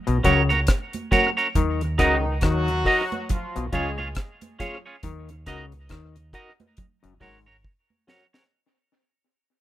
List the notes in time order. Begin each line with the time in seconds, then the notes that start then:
0.07 B1 B2, closed hi-hat
0.23 C#2 C#3 C#4 F#4 A#4 C#5 F#5, kick, closed hi-hat, low conga
0.49 C#4 F#4 A#4 C#5, closed hi-hat, high conga
0.67 kick, cross-stick, closed hi-hat
0.93 closed hi-hat, high conga
1.11 C#4 F#4 A#4 C#5 F#5, kick, closed hi-hat, high conga, low conga
1.37 C#4 F#4 A#4 C#5, closed hi-hat
1.55 D#2 D#3, kick, closed hi-hat, low conga
1.81 closed hi-hat
1.98 C#2 C#3 D#3 D#4 F#4 A#4 D#5 F#5, kick, cross-stick, closed hi-hat
2.41 D#2 D#3 F#3 F#4, kick, cross-stick, closed hi-hat
2.68 closed hi-hat
2.85 D#4 F#4 A#4 D#5 F#5, kick, open hi-hat
3.12 closed hi-hat, high conga
3.29 F3 F4, kick, closed hi-hat, low conga
3.56 B1 B2, closed hi-hat
3.72 C#2 C#3 G#3 C#4 F4 G#4 C#5 F5, kick, closed hi-hat, low conga
3.98 C#4 F4 G#4 C#5, high conga
4.15 kick, cross-stick, closed hi-hat
4.41 closed hi-hat, high conga
4.59 C#4 F4 G#4 C#5 F5, kick, closed hi-hat, high conga, low conga
4.86 C#4 F4 G#4 C#5
5.03 D#2 D#3, kick, closed hi-hat, low conga
5.29 closed hi-hat
5.46 C#2 C#3 D#4 F#4 A#4 D#5 F#5, kick, cross-stick, closed hi-hat
5.72 closed hi-hat
5.89 D#2 D#3, kick, cross-stick, closed hi-hat
6.16 closed hi-hat
6.33 D#4 F#4 A#4 D#5 F#5, kick, closed hi-hat
6.60 closed hi-hat, high conga
6.77 kick, closed hi-hat, low conga
7.03 F#1 F#2, closed hi-hat
7.20 G#1 G#2 C#4 F#4 A#4 C#5 F#5, kick, open hi-hat, low conga
7.46 C#4 F#4 A#4 C#5
7.64 kick
7.90 high conga
8.07 C#4 F#4 A#4 C#5 F#5, snare, low conga
8.33 C#4 F#4 A#4 C#5, snare